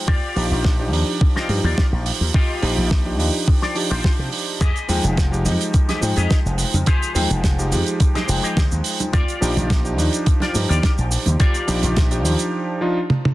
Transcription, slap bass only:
0.08 D#2
0.36 A#1
0.51 A#1
0.92 D#2
1.49 G2
1.64 D#2
1.92 A#1
2.21 D#2
2.63 A#1
2.78 A#1
3.19 D#2
3.91 A#1
4.19 C3
4.61 F2
4.89 D#2
5.04 F1
5.46 F2
6.02 G#2
6.17 F2
6.46 F1
6.74 F2
7.16 D#2
7.30 F1
7.72 F2
8.29 F1
8.43 muted slap bass stroke
8.57 D3
8.72 D#2
9.14 D#2
9.42 A#1
9.57 A#1
9.98 D#2
10.55 G2
10.70 D#2
10.98 A#1
11.26 D#2
11.68 A#1
11.83 A#1
12.25 D#2

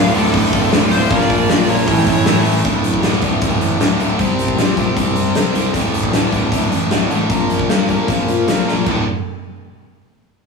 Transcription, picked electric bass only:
Already playing: D1
0.15 D1
0.34 D1
0.53 D1
0.72 D1
1.11 A#1
1.49 A#1
1.68 A#1
1.88 A1
2.07 A1
2.26 A1
2.65 D1
2.83 D1
3.02 D1
3.22 D1
3.42 D1
3.60 A1
3.81 D1
3.99 D1
4.19 C2
4.39 C2
4.58 A#1
4.96 C2
5.16 C2
5.36 C2
5.54 C2
5.74 D1
5.93 D1
6.12 D1
6.33 D1
6.52 D1
6.71 A1
6.92 D1
7.10 A1
7.30 A#1
7.50 A#1
7.69 G2
8.08 A#1
8.28 A#2
8.47 A#1
8.67 A#1
8.86 D1

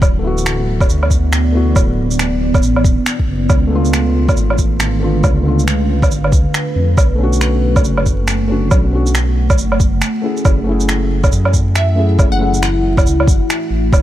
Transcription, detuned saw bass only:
0.02 D1
0.90 D2
1.76 D1
2.63 A1
2.84 D1
3.28 F#1
3.50 C#2
4.38 G#1
5.24 C#2
6.11 G#1
6.32 C#2
6.76 F2
6.98 B1
7.85 F#1
8.72 B1
9.58 F#1
9.80 F#1
10.45 F#1
11.32 F#2
12.19 F#1
13.06 C#2
13.27 F#1
13.71 A1
13.93 D1

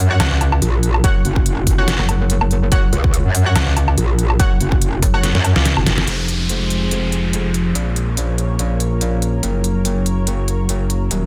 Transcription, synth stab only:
0.10 F#4 C#5 F#5
1.04 F#4 C#5 F#5
1.78 F#4 C#5 F#5
2.72 F#4 C#5 F#5
3.46 F#4 C#5 F#5
4.40 F#4 C#5 F#5
5.14 F#4 C#5 F#5

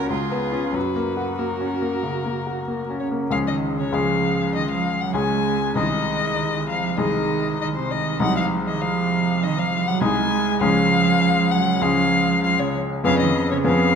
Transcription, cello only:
Already playing: A#4
0.11 F4
0.75 F#4
3.00 C#3
3.32 F3
3.47 D#3
3.79 C#3
3.93 F3
4.55 D#3
4.70 F3
5.01 F#3
5.16 G#3
5.77 D#3
6.68 F3
6.99 D#3
7.61 D#3
7.76 C3
7.91 D#3
8.21 F#3
8.37 F3
8.67 D#3
8.82 F3
9.43 D#3
9.57 F3
9.88 F#3
10.02 G#3
10.62 F3
11.52 F#3
11.82 F3
12.44 F3
12.59 C#3
13.06 F3
13.21 D#3
13.51 C#3
13.67 F3

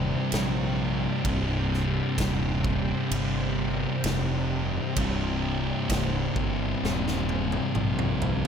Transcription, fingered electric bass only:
Already playing: D#1
0.32 A#1
1.25 C1
2.18 D#1
3.11 G1
4.04 F1
4.97 C1
5.89 C1
6.36 G1
6.83 D#1
7.76 A#1

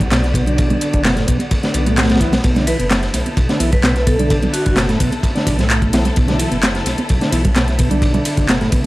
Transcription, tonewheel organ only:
0.11 B2
0.35 B2
0.47 D3
0.70 D3
1.04 B2
1.17 A2
1.27 B2
1.63 D3
1.86 A2
2.21 E3
2.44 B2
2.56 D3
2.67 E3
2.79 B2
3.49 D3
3.60 E3
3.84 B2
4.07 B2
4.19 D3
4.43 D3
4.76 B2
4.89 A2
5.00 B2
5.35 D3
5.58 A2
5.93 E3
6.16 B2
6.28 D3
6.39 E3
6.51 B2
7.21 D3
7.32 E3
7.55 B2
7.78 B2
7.91 D3
8.14 D3
8.49 B2
8.61 A2
8.72 B2

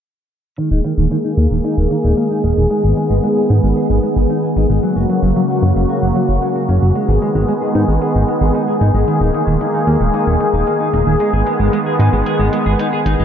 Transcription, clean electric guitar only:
0.58 D#3
0.71 D#4
0.85 D#3
0.98 D#3
1.11 D#3
1.24 D#4
1.38 A#3
1.51 D#3
1.64 D#4
1.78 D#3
1.91 D#3
2.04 D#4
2.17 A#3
2.31 D#4
2.44 A#3
2.57 D#3
2.70 G#3
2.84 G#4
2.97 G#3
3.10 G#3
3.24 G#3
3.37 G#4
3.50 D#4
3.64 G#3
3.77 G#4
3.90 G#3
4.03 G#3
4.17 G#4
4.30 D#4
4.43 G#4
4.57 D#4
4.70 G#3
4.83 F#3
4.96 F#4
5.10 F#3
5.23 F#3
5.36 F#3
5.50 F#4
5.63 C#4
5.76 F#3
5.90 F#4
6.03 F#3
6.16 F#3
6.29 F#4
6.42 C#4
6.56 F#4
6.69 C#4
6.82 F#3
6.95 G#3
7.09 G#4
7.22 G#3
7.35 G#3
7.49 G#3
7.62 G#4
7.75 D#4
7.88 G#3
8.02 G#4
8.15 G#3
8.28 G#3
8.42 G#4
8.55 D#4
8.68 G#4
8.81 D#4
8.94 G#3
9.08 D#3
9.21 D#4
9.34 D#3
9.47 D#3
9.61 D#3
9.74 D#4
9.87 A#3
10.00 D#3
10.14 D#4
10.27 D#3
10.40 D#3
10.54 D#4
10.67 A#3
10.80 D#4
10.93 A#3
11.07 D#3
11.20 G#3
11.33 G#4
11.47 G#3
11.60 G#3
11.73 G#3
11.86 G#4
12.00 D#4
12.13 G#3
12.26 G#4
12.40 G#3
12.53 G#3
12.66 G#4
12.79 D#4
12.93 G#4
13.06 D#4
13.20 G#3

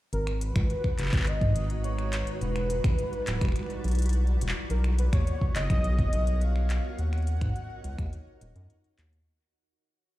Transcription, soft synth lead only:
0.13 A#4
0.41 B4
1.27 D#5
1.84 C#5
2.41 B4
4.70 A#4
4.99 B4
5.13 C#5
5.56 D#5
6.41 F5
6.99 F#5

